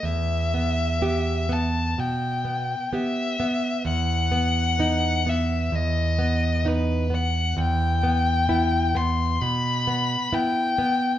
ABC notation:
X:1
M:4/4
L:1/8
Q:1/4=65
K:Em
V:1 name="Violin"
e3 a g2 e2 | f3 e ^d2 B f | g3 c' b2 g2 |]
V:2 name="Nylon-string guitar"
E,, B, [B,G] B, B,, B, [B,G] B, | E,, B, [B,^D] B, E,, B, [B,D] B, | E,, B, [B,E] B, B,, B, [B,E] B, |]